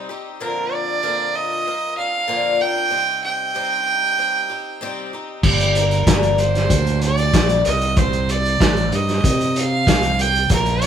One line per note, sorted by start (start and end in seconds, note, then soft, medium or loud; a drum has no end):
0.09 0.40 C4 medium
0.09 0.41 D#4 medium
0.09 0.40 G4 medium
0.40 1.02 A#2 medium
0.40 1.02 D3 medium
0.40 1.02 F3 medium
0.40 1.04 C4 medium
0.40 1.03 D4 medium
0.40 1.03 A#4 medium
0.40 0.75 A#4 medium
0.73 1.37 D5 loud
1.03 1.66 A#2 medium
1.03 1.66 D3 medium
1.03 1.64 F3 medium
1.03 1.67 C4 medium
1.03 1.66 A#4 medium
1.35 1.97 D#5 loud
1.66 1.97 F3 medium
1.66 1.98 C4 medium
1.66 1.96 A#4 medium
1.97 2.27 F3 soft
1.97 2.28 C4 medium
1.97 2.28 D4 medium
1.97 2.28 A#4 medium
1.97 2.63 F5 loud
2.28 2.60 A#2 loud
2.28 2.60 D3 medium
2.28 2.60 F3 medium
2.28 2.60 C4 medium
2.28 2.60 D4 medium
2.28 2.58 A#4 medium
2.59 2.90 F3 soft
2.59 2.90 C4 medium
2.59 2.92 D4 medium
2.59 2.91 A#4 medium
2.59 3.23 G5 loud
2.90 3.54 C3 medium
2.90 3.54 G3 medium
2.90 3.54 C4 medium
2.90 3.54 D#4 medium
2.90 3.56 G4 medium
3.24 5.09 G5 loud
3.55 4.18 C3 medium
3.55 4.18 G3 medium
3.55 4.17 C4 medium
3.55 4.18 D#4 loud
3.55 4.20 G4 medium
4.18 4.50 G3 medium
4.18 4.50 C4 medium
4.18 4.50 D#4 medium
4.18 4.48 G4 medium
4.50 4.82 C4 medium
4.50 4.81 D#4 medium
4.50 4.81 G4 medium
4.81 5.13 C3 medium
4.81 5.13 G3 loud
4.81 5.14 C4 loud
4.81 5.13 D#4 loud
4.81 5.12 G4 loud
5.13 5.45 C4 medium
5.13 5.45 D#4 medium
5.13 5.44 G4 medium
5.43 6.04 G1 loud
5.43 6.07 G2 medium
5.43 6.08 D3 medium
5.43 6.09 G3 medium
5.43 6.08 A#3 medium
5.43 6.08 D4 medium
5.43 5.78 G4 medium
5.43 6.09 G4 medium
5.43 kick loud
5.43 crash loud
5.60 closed hi-hat medium
5.75 6.41 A#4 medium
5.75 closed hi-hat medium
5.91 closed hi-hat soft
6.06 6.67 G1 medium
6.06 6.71 G2 medium
6.06 6.72 D3 medium
6.06 6.71 G3 medium
6.06 6.72 A#3 medium
6.06 6.73 G4 medium
6.06 kick loud
6.06 snare loud
6.06 closed hi-hat loud
6.10 6.72 D4 medium
6.23 closed hi-hat medium
6.38 7.03 C5 loud
6.38 closed hi-hat medium
6.55 snare soft
6.55 closed hi-hat medium
6.70 7.30 D2 loud
6.70 7.03 G3 medium
6.70 7.04 A#3 medium
6.70 7.04 D4 medium
6.70 7.02 G4 medium
6.70 kick loud
6.70 closed hi-hat loud
6.87 closed hi-hat medium
7.01 7.34 A#3 medium
7.01 7.34 D4 medium
7.01 7.34 G4 medium
7.01 7.63 D5 loud
7.01 closed hi-hat medium
7.06 7.33 G3 soft
7.18 closed hi-hat medium
7.33 7.64 A#1 loud
7.33 7.66 G2 loud
7.33 7.66 D3 medium
7.33 7.66 G3 loud
7.33 7.66 A#3 loud
7.33 7.67 D4 medium
7.33 7.65 G4 medium
7.33 kick loud
7.33 snare loud
7.33 closed hi-hat loud
7.49 closed hi-hat medium
7.65 8.58 C2 loud
7.65 7.98 C4 soft
7.65 7.98 D#4 medium
7.65 7.98 G4 medium
7.65 8.00 D#5 loud
7.65 closed hi-hat medium
7.81 closed hi-hat soft
7.97 8.60 C3 medium
7.97 8.61 G3 medium
7.97 8.62 C4 medium
7.97 8.62 D#4 medium
7.97 8.62 G4 medium
7.97 8.33 C5 loud
7.97 kick loud
7.97 closed hi-hat loud
8.13 closed hi-hat soft
8.29 8.97 D5 loud
8.29 closed hi-hat medium
8.45 closed hi-hat soft
8.61 8.91 A1 loud
8.61 9.25 C3 medium
8.61 9.24 G3 medium
8.61 9.26 C4 medium
8.61 9.25 D#4 medium
8.61 9.26 G4 medium
8.61 kick loud
8.61 snare loud
8.61 closed hi-hat medium
8.77 closed hi-hat medium
8.92 9.23 G2 medium
8.92 9.60 D#5 loud
8.92 closed hi-hat medium
9.09 snare soft
9.09 closed hi-hat soft
9.24 9.84 C3 loud
9.24 9.57 G3 medium
9.24 9.57 C4 medium
9.24 9.57 D#4 medium
9.24 9.56 G4 medium
9.24 kick loud
9.24 closed hi-hat loud
9.41 closed hi-hat medium
9.56 9.87 C4 soft
9.56 9.88 D#4 medium
9.56 9.88 G4 medium
9.56 10.23 F5 loud
9.56 closed hi-hat medium
9.87 10.47 C2 loud
9.87 10.19 C3 medium
9.87 10.20 G3 medium
9.87 10.20 C4 medium
9.87 10.19 D#4 medium
9.87 10.18 G4 medium
9.87 kick loud
9.87 snare loud
9.87 closed hi-hat loud
10.03 closed hi-hat medium
10.19 10.51 C4 medium
10.19 10.52 D#4 medium
10.19 10.51 G4 medium
10.19 10.52 G5 loud
10.19 closed hi-hat medium
10.35 closed hi-hat soft
10.50 10.87 A#1 loud
10.50 10.87 A#2 medium
10.50 10.87 D3 medium
10.50 10.87 F3 medium
10.50 10.87 C4 medium
10.50 10.87 D4 medium
10.50 10.87 A#4 medium
10.50 10.85 A#4 loud
10.50 kick loud
10.50 closed hi-hat loud
10.66 closed hi-hat medium
10.82 10.87 D5 loud
10.82 closed hi-hat medium